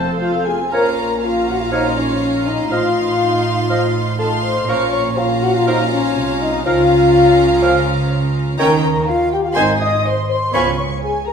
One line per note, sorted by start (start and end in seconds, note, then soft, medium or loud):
0.00 0.51 F1 medium
0.00 0.51 F2 medium
0.00 0.17 A2 medium
0.00 0.44 F3 medium
0.00 0.43 C4 medium
0.00 0.46 A4 medium
0.00 0.43 C5 medium
0.00 0.20 A5 medium
0.07 0.20 C4 medium
0.07 0.20 A4 medium
0.19 0.32 A3 medium
0.19 0.32 F4 medium
0.19 0.44 F5 medium
0.33 0.46 C4 medium
0.33 0.46 A4 medium
0.46 0.59 A3 medium
0.46 0.59 F4 medium
0.46 0.58 G#4 medium
0.46 0.72 G#5 medium
0.46 0.74 G#5 medium
0.59 0.72 C4 medium
0.59 0.72 A4 medium
0.72 2.67 A#1 medium
0.72 2.67 A#2 medium
0.72 0.90 F3 medium
0.72 1.19 C#4 medium
0.72 1.19 F4 medium
0.72 0.84 A#4 medium
0.72 0.90 C#5 medium
0.72 0.89 F5 medium
0.72 1.19 F5 medium
0.72 0.96 A#5 medium
0.72 1.19 A#5 medium
0.97 1.22 A#4 medium
0.97 1.21 A#5 medium
0.97 1.22 A#5 medium
1.22 2.68 C#4 medium
1.22 2.68 F4 medium
1.22 1.47 F4 medium
1.22 1.30 F5 medium
1.22 1.49 F5 medium
1.22 2.69 F5 medium
1.22 2.68 A#5 medium
1.48 1.60 F#4 medium
1.48 1.59 F#5 medium
1.48 1.61 F#5 medium
1.59 1.66 F4 medium
1.59 1.71 F5 medium
1.71 1.89 F3 medium
1.71 1.96 D#4 medium
1.71 1.89 C#5 medium
1.71 1.96 D#5 medium
1.71 1.89 F5 medium
1.96 2.47 C#4 medium
1.96 2.45 C#5 medium
1.96 2.46 C#5 medium
2.45 2.72 D#4 medium
2.45 2.71 D#5 medium
2.45 2.52 D#5 medium
2.71 4.65 A1 medium
2.71 4.65 A2 medium
2.71 2.89 F3 medium
2.71 4.18 D#4 medium
2.71 3.92 F4 medium
2.71 4.17 F4 medium
2.71 2.89 D#5 medium
2.71 3.95 F5 medium
2.71 2.89 F5 medium
2.71 4.17 F5 medium
2.71 3.93 F5 medium
2.71 4.17 C6 medium
3.69 3.87 F3 medium
3.69 3.88 D#5 medium
3.69 3.87 F5 medium
4.18 4.67 D#4 medium
4.18 4.67 F4 medium
4.18 4.30 A4 medium
4.18 4.68 F5 medium
4.18 4.42 A5 medium
4.18 4.28 A5 medium
4.18 4.68 C6 medium
4.43 4.68 C5 medium
4.43 4.68 C6 medium
4.43 4.71 C6 medium
4.68 6.16 A#1 medium
4.68 6.16 A#2 medium
4.68 4.86 F3 medium
4.68 5.17 C#4 medium
4.68 5.17 F4 medium
4.68 4.86 A#4 medium
4.68 4.91 C#5 medium
4.68 4.86 F5 medium
4.68 5.17 F5 medium
4.68 5.17 A#5 medium
4.68 4.91 C#6 medium
4.68 4.93 C#6 medium
4.92 5.17 C#5 medium
4.92 5.01 C#6 medium
4.92 5.19 C#6 medium
5.17 6.63 C#4 medium
5.17 5.42 F4 medium
5.17 6.63 F4 medium
5.17 5.42 F5 medium
5.17 5.26 F5 medium
5.17 6.63 F5 medium
5.17 6.63 A#5 medium
5.42 5.55 F#4 medium
5.42 5.47 F#5 medium
5.42 5.55 F#5 medium
5.55 5.68 F4 medium
5.55 5.67 F5 medium
5.55 5.61 F5 medium
5.67 5.85 F3 medium
5.67 5.79 D#4 medium
5.67 5.84 A#4 medium
5.67 5.73 D#5 medium
5.67 5.92 D#5 medium
5.67 5.85 F5 medium
5.91 6.40 C#4 medium
5.91 6.41 C#5 medium
5.91 6.43 C#5 medium
6.17 6.66 C2 medium
6.17 6.66 C3 medium
6.41 6.65 D#4 medium
6.41 6.66 D#5 medium
6.65 8.59 C#2 medium
6.65 8.59 C#3 medium
6.65 6.83 F3 medium
6.65 8.55 C#4 medium
6.65 8.55 F4 medium
6.65 7.84 F4 medium
6.65 6.83 A#4 medium
6.65 7.84 F5 medium
6.65 6.83 F5 medium
6.65 8.55 F5 medium
6.65 7.85 F5 medium
6.65 8.56 A#5 medium
7.62 7.79 F3 medium
7.62 7.79 A#4 medium
7.62 7.79 F5 medium
8.59 8.99 D#2 medium
8.59 8.99 D#3 medium
8.59 8.76 D#3 medium
8.59 8.81 C#4 medium
8.59 8.81 D#4 medium
8.59 8.70 A#4 medium
8.59 8.76 C#5 medium
8.59 8.81 G5 medium
8.59 8.76 G5 medium
8.59 8.81 A#5 medium
8.59 8.67 A#5 medium
8.59 8.82 A#5 medium
8.83 9.07 A#4 medium
8.83 9.07 A#5 medium
9.08 9.32 F4 medium
9.08 9.31 F5 medium
9.08 9.32 F5 medium
9.32 9.44 G4 medium
9.32 9.37 G5 medium
9.32 9.44 G5 medium
9.44 9.58 F4 medium
9.44 9.56 F5 medium
9.44 9.50 F5 medium
9.55 9.97 G#1 medium
9.55 9.97 G#2 medium
9.55 9.73 D#3 medium
9.55 9.79 C4 medium
9.55 9.79 D#4 medium
9.55 9.81 D#4 medium
9.55 9.73 C5 medium
9.55 9.81 D#5 medium
9.55 9.62 D#5 medium
9.55 9.79 G#5 medium
9.55 9.73 G#5 medium
9.55 9.79 C6 medium
9.80 10.05 D#5 medium
9.80 10.04 D#6 medium
9.80 10.05 D#6 medium
10.05 10.16 C5 medium
10.05 10.29 C6 medium
10.28 10.39 C5 medium
10.28 10.55 C6 medium
10.28 10.53 C6 medium
10.53 10.95 C#2 medium
10.53 10.94 C#3 medium
10.53 10.71 F3 medium
10.53 10.76 B3 medium
10.53 10.76 F4 medium
10.53 10.64 C#5 medium
10.53 10.71 C#5 medium
10.53 10.77 G#5 medium
10.53 10.71 B5 medium
10.53 10.77 C#6 medium
10.53 10.76 C#6 medium
10.53 10.78 C#6 medium
10.78 11.02 C#5 medium
10.78 10.84 C#6 medium
10.78 11.02 C#6 medium
11.02 11.27 G#4 medium
11.02 11.26 G#5 medium
11.26 11.33 A#4 medium
11.26 11.33 A#5 medium